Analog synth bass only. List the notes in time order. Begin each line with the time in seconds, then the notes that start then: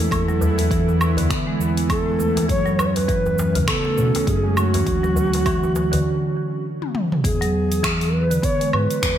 0.11 E2
1.60 E2
2.49 F#2
3.98 B2
4.27 F#2
4.86 D2
7.24 E2
8.73 G#2
9.03 E2